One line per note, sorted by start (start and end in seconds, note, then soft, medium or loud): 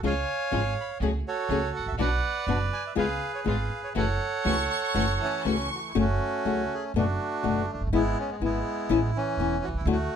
0.03 0.23 C#2 medium
0.03 0.12 C#3 medium
0.03 0.12 F3 medium
0.03 0.12 G#3 medium
0.03 0.24 C#4 medium
0.03 0.12 C#4 medium
0.03 0.24 F4 medium
0.03 0.12 F4 medium
0.03 0.24 G#4 medium
0.03 0.98 C#5 medium
0.03 0.98 F5 medium
0.03 0.74 G#5 medium
0.51 0.72 G#1 medium
0.51 0.60 C#3 medium
0.51 0.60 F3 medium
0.51 0.61 G#3 medium
0.51 0.72 C#4 medium
0.51 0.61 C#4 medium
0.51 0.72 F4 medium
0.51 0.61 F4 medium
0.51 0.72 G#4 medium
0.81 0.91 B5 medium
1.00 1.21 C#2 medium
1.00 1.10 C#3 medium
1.00 1.10 F#3 medium
1.00 1.21 A3 medium
1.00 1.10 A3 medium
1.00 1.10 C#4 medium
1.00 1.21 F#4 medium
1.00 1.21 G#4 medium
1.00 1.10 G#4 medium
1.28 1.96 F#4 soft
1.28 1.96 A4 soft
1.28 1.72 C#5 medium
1.49 1.70 C#2 medium
1.49 1.59 C#3 medium
1.49 1.59 F#3 medium
1.49 1.69 A3 medium
1.49 1.59 A3 medium
1.49 1.59 C#4 medium
1.49 1.70 F#4 medium
1.49 1.70 G#4 medium
1.49 1.59 G#4 medium
1.76 1.85 G#1 soft
1.76 1.86 F#5 medium
1.86 1.92 A1 soft
1.86 1.93 E5 medium
1.92 1.98 A#1 medium
1.98 2.19 B1 medium
1.98 2.07 B2 medium
1.98 2.07 F#3 medium
1.98 2.19 B3 medium
1.98 2.08 B3 medium
1.98 2.19 D4 medium
1.98 2.08 D4 medium
1.98 2.19 F#4 medium
1.98 2.08 F#4 medium
1.98 2.94 B4 medium
1.98 2.93 D5 medium
1.98 2.45 F#5 medium
2.47 2.68 F#1 medium
2.47 2.57 B2 medium
2.47 2.56 F#3 medium
2.47 2.68 B3 medium
2.47 2.57 B3 medium
2.47 2.68 D4 medium
2.47 2.57 D4 medium
2.47 2.68 F#4 medium
2.47 2.57 F#4 medium
2.73 2.84 G#5 medium
2.87 2.92 E5 medium
2.95 3.18 C#2 medium
2.95 3.05 C#3 medium
2.95 3.05 G#3 medium
2.95 3.05 B3 medium
2.95 3.18 B3 medium
2.95 3.18 C#4 medium
2.95 3.05 F4 medium
2.95 3.18 F4 medium
2.95 3.06 G#4 medium
2.95 3.46 G#4 medium
2.95 3.46 B4 medium
2.95 3.32 F5 medium
3.35 3.40 C#5 medium
3.44 3.67 G#1 medium
3.44 3.54 C#3 medium
3.44 3.55 G#3 medium
3.44 3.55 B3 medium
3.44 3.67 B3 medium
3.44 3.68 C#4 medium
3.44 3.55 F4 medium
3.44 3.68 F4 medium
3.44 3.55 G#4 medium
3.44 3.93 G#4 medium
3.44 3.93 B4 soft
3.44 3.81 F5 medium
3.84 3.89 C#5 medium
3.95 4.16 F#1 medium
3.95 4.05 C#3 medium
3.95 4.04 E3 medium
3.95 4.16 A3 medium
3.95 4.05 A3 medium
3.95 4.05 C#4 medium
3.95 4.16 E4 medium
3.95 4.16 F#4 medium
3.95 4.05 F#4 medium
3.95 5.43 A4 medium
3.95 5.42 C#5 medium
3.95 5.43 F#5 medium
4.44 4.66 C#2 medium
4.44 4.54 C#3 medium
4.44 4.54 E3 medium
4.44 4.66 A3 medium
4.44 4.54 A3 medium
4.44 4.54 C#4 medium
4.44 4.66 E4 medium
4.44 4.66 F#4 medium
4.44 4.55 F#4 medium
4.44 4.68 C#6 medium
4.70 4.82 C#6 medium
4.83 5.17 C#6 medium
4.95 5.16 F#1 medium
4.95 5.04 C#3 medium
4.95 5.04 E3 medium
4.95 5.16 A3 medium
4.95 5.04 A3 medium
4.95 5.05 C#4 medium
4.95 5.16 E4 soft
4.95 5.16 F#4 medium
4.95 5.04 F#4 medium
5.21 5.92 E3 soft
5.21 5.92 A3 soft
5.21 5.69 C#4 medium
5.21 5.47 A5 medium
5.45 5.67 C#2 medium
5.45 5.55 C#3 medium
5.45 5.55 E3 medium
5.45 5.67 A3 medium
5.45 5.55 A3 medium
5.45 5.55 C#4 medium
5.45 5.67 E4 soft
5.45 5.67 F#4 medium
5.45 5.56 F#4 medium
5.45 5.95 C#6 medium
5.75 5.80 F#4 medium
5.89 5.93 E4 soft
5.95 6.16 F#1 medium
5.95 6.04 C#3 medium
5.95 6.04 F#3 medium
5.95 6.04 A3 medium
5.95 6.04 C#4 medium
5.95 6.92 C#4 medium
5.95 6.04 F#4 medium
5.99 6.92 A3 medium
5.99 6.74 F#4 medium
6.45 6.66 C#2 medium
6.45 6.62 C#3 medium
6.45 6.62 F#3 medium
6.45 6.62 A3 medium
6.45 6.62 C#4 medium
6.45 6.63 F#4 medium
6.74 6.84 G#4 medium
6.94 7.15 F#1 medium
6.94 7.04 B2 medium
6.94 7.04 D3 medium
6.94 7.04 A3 medium
6.94 7.89 A3 medium
6.94 7.04 B3 medium
6.94 7.71 D4 medium
6.94 7.05 F#4 medium
6.94 7.66 F#4 medium
7.43 7.65 F#1 medium
7.43 7.60 B2 medium
7.43 7.60 D3 medium
7.43 7.61 A3 medium
7.43 7.61 B3 medium
7.43 7.61 F#4 medium
7.73 7.80 F1 soft
7.73 7.83 D4 medium
7.81 7.86 F#1 medium
7.87 7.92 G1 medium
7.93 8.13 G#1 medium
7.93 8.01 G#3 medium
7.93 8.43 G#3 medium
7.93 8.01 B3 medium
7.93 8.30 B3 medium
7.93 8.01 E4 medium
7.93 8.18 E4 medium
8.19 8.31 C#4 medium
8.32 8.36 B3 medium
8.40 8.61 G#1 medium
8.40 8.58 G#3 medium
8.40 8.58 B3 medium
8.40 9.11 B3 medium
8.40 8.58 E4 medium
8.44 9.11 G#3 medium
8.44 9.18 E4 medium
8.89 9.10 A1 medium
8.89 8.98 E3 medium
8.89 8.98 B3 medium
8.89 8.99 C#4 medium
8.89 8.99 E4 loud
9.16 9.84 E3 medium
9.16 9.65 C#4 medium
9.37 9.58 E1 medium
9.37 9.55 E3 medium
9.37 9.56 B3 medium
9.37 9.56 C#4 medium
9.37 9.56 E4 medium
9.64 9.73 B1 soft
9.64 9.69 F#4 medium
9.74 9.80 C2 medium
9.74 9.87 E4 medium
9.81 9.85 C#2 medium
9.85 10.06 D2 medium
9.85 9.96 D3 medium
9.85 9.96 F#3 medium
9.85 9.96 A3 medium
9.85 9.96 E4 medium
9.85 9.96 F#4 medium
9.91 10.16 A3 medium
9.91 10.16 F#4 medium